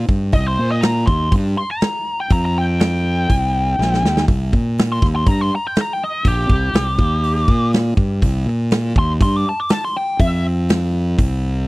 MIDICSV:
0, 0, Header, 1, 4, 480
1, 0, Start_track
1, 0, Tempo, 493421
1, 322, Time_signature, 4, 2, 24, 8
1, 11357, End_track
2, 0, Start_track
2, 0, Title_t, "Lead electric guitar"
2, 0, Program_c, 0, 29
2, 325, Note_on_c, 0, 75, 113
2, 440, Note_off_c, 0, 75, 0
2, 461, Note_on_c, 0, 72, 89
2, 685, Note_off_c, 0, 72, 0
2, 693, Note_on_c, 0, 75, 95
2, 790, Note_on_c, 0, 82, 87
2, 804, Note_off_c, 0, 75, 0
2, 1029, Note_off_c, 0, 82, 0
2, 1038, Note_on_c, 0, 84, 100
2, 1273, Note_off_c, 0, 84, 0
2, 1534, Note_on_c, 0, 84, 104
2, 1645, Note_off_c, 0, 84, 0
2, 1664, Note_on_c, 0, 82, 95
2, 2119, Note_off_c, 0, 82, 0
2, 2141, Note_on_c, 0, 79, 89
2, 2249, Note_off_c, 0, 79, 0
2, 2260, Note_on_c, 0, 82, 100
2, 2368, Note_off_c, 0, 82, 0
2, 2385, Note_on_c, 0, 82, 87
2, 2491, Note_off_c, 0, 82, 0
2, 2510, Note_on_c, 0, 79, 93
2, 2718, Note_off_c, 0, 79, 0
2, 2730, Note_on_c, 0, 79, 96
2, 4127, Note_off_c, 0, 79, 0
2, 4790, Note_on_c, 0, 84, 89
2, 4893, Note_off_c, 0, 84, 0
2, 5017, Note_on_c, 0, 84, 83
2, 5133, Note_off_c, 0, 84, 0
2, 5133, Note_on_c, 0, 82, 95
2, 5265, Note_off_c, 0, 82, 0
2, 5265, Note_on_c, 0, 84, 98
2, 5369, Note_off_c, 0, 84, 0
2, 5402, Note_on_c, 0, 82, 92
2, 5499, Note_off_c, 0, 82, 0
2, 5521, Note_on_c, 0, 79, 86
2, 5618, Note_off_c, 0, 79, 0
2, 5653, Note_on_c, 0, 82, 88
2, 5771, Note_off_c, 0, 82, 0
2, 5771, Note_on_c, 0, 79, 90
2, 5863, Note_off_c, 0, 79, 0
2, 5871, Note_on_c, 0, 75, 93
2, 6089, Note_off_c, 0, 75, 0
2, 6107, Note_on_c, 0, 67, 117
2, 7493, Note_off_c, 0, 67, 0
2, 8742, Note_on_c, 0, 84, 97
2, 8847, Note_off_c, 0, 84, 0
2, 8973, Note_on_c, 0, 84, 87
2, 9109, Note_off_c, 0, 84, 0
2, 9109, Note_on_c, 0, 86, 95
2, 9211, Note_off_c, 0, 86, 0
2, 9231, Note_on_c, 0, 81, 94
2, 9332, Note_off_c, 0, 81, 0
2, 9336, Note_on_c, 0, 86, 99
2, 9443, Note_on_c, 0, 81, 93
2, 9444, Note_off_c, 0, 86, 0
2, 9557, Note_off_c, 0, 81, 0
2, 9578, Note_on_c, 0, 84, 96
2, 9685, Note_off_c, 0, 84, 0
2, 9693, Note_on_c, 0, 79, 96
2, 9919, Note_off_c, 0, 79, 0
2, 9928, Note_on_c, 0, 76, 122
2, 10157, Note_off_c, 0, 76, 0
2, 11357, End_track
3, 0, Start_track
3, 0, Title_t, "Fingered electric bass"
3, 0, Program_c, 1, 33
3, 86, Note_on_c, 1, 43, 93
3, 308, Note_off_c, 1, 43, 0
3, 322, Note_on_c, 1, 36, 89
3, 545, Note_off_c, 1, 36, 0
3, 570, Note_on_c, 1, 46, 92
3, 1013, Note_off_c, 1, 46, 0
3, 1044, Note_on_c, 1, 39, 82
3, 1267, Note_off_c, 1, 39, 0
3, 1283, Note_on_c, 1, 43, 86
3, 1506, Note_off_c, 1, 43, 0
3, 2242, Note_on_c, 1, 41, 86
3, 3163, Note_off_c, 1, 41, 0
3, 3212, Note_on_c, 1, 36, 86
3, 3654, Note_off_c, 1, 36, 0
3, 3684, Note_on_c, 1, 34, 89
3, 3906, Note_off_c, 1, 34, 0
3, 3922, Note_on_c, 1, 39, 84
3, 4145, Note_off_c, 1, 39, 0
3, 4165, Note_on_c, 1, 36, 99
3, 4387, Note_off_c, 1, 36, 0
3, 4406, Note_on_c, 1, 46, 86
3, 4850, Note_off_c, 1, 46, 0
3, 4885, Note_on_c, 1, 39, 87
3, 5107, Note_off_c, 1, 39, 0
3, 5122, Note_on_c, 1, 43, 89
3, 5344, Note_off_c, 1, 43, 0
3, 6085, Note_on_c, 1, 34, 93
3, 6306, Note_off_c, 1, 34, 0
3, 6320, Note_on_c, 1, 36, 93
3, 6543, Note_off_c, 1, 36, 0
3, 6550, Note_on_c, 1, 36, 75
3, 6777, Note_off_c, 1, 36, 0
3, 6792, Note_on_c, 1, 39, 91
3, 7242, Note_off_c, 1, 39, 0
3, 7281, Note_on_c, 1, 46, 94
3, 7726, Note_off_c, 1, 46, 0
3, 7754, Note_on_c, 1, 43, 91
3, 7979, Note_off_c, 1, 43, 0
3, 7994, Note_on_c, 1, 36, 95
3, 8219, Note_off_c, 1, 36, 0
3, 8230, Note_on_c, 1, 46, 85
3, 8681, Note_off_c, 1, 46, 0
3, 8720, Note_on_c, 1, 39, 90
3, 8942, Note_off_c, 1, 39, 0
3, 8954, Note_on_c, 1, 43, 92
3, 9180, Note_off_c, 1, 43, 0
3, 9916, Note_on_c, 1, 41, 98
3, 10840, Note_off_c, 1, 41, 0
3, 10887, Note_on_c, 1, 36, 86
3, 11331, Note_off_c, 1, 36, 0
3, 11357, End_track
4, 0, Start_track
4, 0, Title_t, "Drums"
4, 84, Note_on_c, 9, 36, 105
4, 181, Note_off_c, 9, 36, 0
4, 313, Note_on_c, 9, 46, 61
4, 322, Note_on_c, 9, 36, 98
4, 410, Note_off_c, 9, 46, 0
4, 419, Note_off_c, 9, 36, 0
4, 798, Note_on_c, 9, 46, 61
4, 812, Note_on_c, 9, 38, 115
4, 895, Note_off_c, 9, 46, 0
4, 909, Note_off_c, 9, 38, 0
4, 1045, Note_on_c, 9, 36, 106
4, 1143, Note_off_c, 9, 36, 0
4, 1280, Note_on_c, 9, 46, 59
4, 1284, Note_on_c, 9, 36, 106
4, 1377, Note_off_c, 9, 46, 0
4, 1381, Note_off_c, 9, 36, 0
4, 1758, Note_on_c, 9, 46, 54
4, 1772, Note_on_c, 9, 38, 112
4, 1856, Note_off_c, 9, 46, 0
4, 1869, Note_off_c, 9, 38, 0
4, 2235, Note_on_c, 9, 46, 55
4, 2243, Note_on_c, 9, 36, 105
4, 2333, Note_off_c, 9, 46, 0
4, 2340, Note_off_c, 9, 36, 0
4, 2721, Note_on_c, 9, 46, 57
4, 2734, Note_on_c, 9, 38, 108
4, 2818, Note_off_c, 9, 46, 0
4, 2832, Note_off_c, 9, 38, 0
4, 3205, Note_on_c, 9, 46, 55
4, 3207, Note_on_c, 9, 36, 102
4, 3302, Note_off_c, 9, 46, 0
4, 3305, Note_off_c, 9, 36, 0
4, 3710, Note_on_c, 9, 38, 59
4, 3808, Note_off_c, 9, 38, 0
4, 3830, Note_on_c, 9, 38, 61
4, 3927, Note_off_c, 9, 38, 0
4, 3942, Note_on_c, 9, 38, 82
4, 4040, Note_off_c, 9, 38, 0
4, 4057, Note_on_c, 9, 38, 90
4, 4154, Note_off_c, 9, 38, 0
4, 4165, Note_on_c, 9, 46, 59
4, 4166, Note_on_c, 9, 36, 106
4, 4263, Note_off_c, 9, 36, 0
4, 4263, Note_off_c, 9, 46, 0
4, 4408, Note_on_c, 9, 36, 98
4, 4505, Note_off_c, 9, 36, 0
4, 4652, Note_on_c, 9, 46, 62
4, 4665, Note_on_c, 9, 38, 114
4, 4749, Note_off_c, 9, 46, 0
4, 4763, Note_off_c, 9, 38, 0
4, 4885, Note_on_c, 9, 36, 110
4, 4910, Note_on_c, 9, 38, 34
4, 4983, Note_off_c, 9, 36, 0
4, 5007, Note_off_c, 9, 38, 0
4, 5119, Note_on_c, 9, 46, 60
4, 5123, Note_on_c, 9, 36, 109
4, 5216, Note_off_c, 9, 46, 0
4, 5220, Note_off_c, 9, 36, 0
4, 5597, Note_on_c, 9, 46, 57
4, 5611, Note_on_c, 9, 38, 110
4, 5695, Note_off_c, 9, 46, 0
4, 5708, Note_off_c, 9, 38, 0
4, 6079, Note_on_c, 9, 36, 105
4, 6080, Note_on_c, 9, 46, 59
4, 6176, Note_off_c, 9, 36, 0
4, 6177, Note_off_c, 9, 46, 0
4, 6318, Note_on_c, 9, 36, 108
4, 6416, Note_off_c, 9, 36, 0
4, 6557, Note_on_c, 9, 46, 59
4, 6571, Note_on_c, 9, 38, 123
4, 6655, Note_off_c, 9, 46, 0
4, 6668, Note_off_c, 9, 38, 0
4, 6797, Note_on_c, 9, 36, 109
4, 6894, Note_off_c, 9, 36, 0
4, 7039, Note_on_c, 9, 46, 56
4, 7137, Note_off_c, 9, 46, 0
4, 7277, Note_on_c, 9, 36, 106
4, 7374, Note_off_c, 9, 36, 0
4, 7519, Note_on_c, 9, 46, 53
4, 7533, Note_on_c, 9, 38, 104
4, 7617, Note_off_c, 9, 46, 0
4, 7630, Note_off_c, 9, 38, 0
4, 7755, Note_on_c, 9, 36, 99
4, 7852, Note_off_c, 9, 36, 0
4, 7998, Note_on_c, 9, 36, 100
4, 8005, Note_on_c, 9, 46, 58
4, 8096, Note_off_c, 9, 36, 0
4, 8102, Note_off_c, 9, 46, 0
4, 8469, Note_on_c, 9, 46, 64
4, 8483, Note_on_c, 9, 38, 113
4, 8567, Note_off_c, 9, 46, 0
4, 8580, Note_off_c, 9, 38, 0
4, 8715, Note_on_c, 9, 36, 113
4, 8812, Note_off_c, 9, 36, 0
4, 8956, Note_on_c, 9, 36, 104
4, 8956, Note_on_c, 9, 46, 58
4, 9053, Note_off_c, 9, 36, 0
4, 9054, Note_off_c, 9, 46, 0
4, 9426, Note_on_c, 9, 46, 61
4, 9440, Note_on_c, 9, 38, 107
4, 9524, Note_off_c, 9, 46, 0
4, 9537, Note_off_c, 9, 38, 0
4, 9916, Note_on_c, 9, 46, 63
4, 9918, Note_on_c, 9, 36, 98
4, 10013, Note_off_c, 9, 46, 0
4, 10016, Note_off_c, 9, 36, 0
4, 10398, Note_on_c, 9, 46, 60
4, 10412, Note_on_c, 9, 38, 119
4, 10496, Note_off_c, 9, 46, 0
4, 10509, Note_off_c, 9, 38, 0
4, 10881, Note_on_c, 9, 36, 108
4, 10884, Note_on_c, 9, 46, 58
4, 10978, Note_off_c, 9, 36, 0
4, 10981, Note_off_c, 9, 46, 0
4, 11357, End_track
0, 0, End_of_file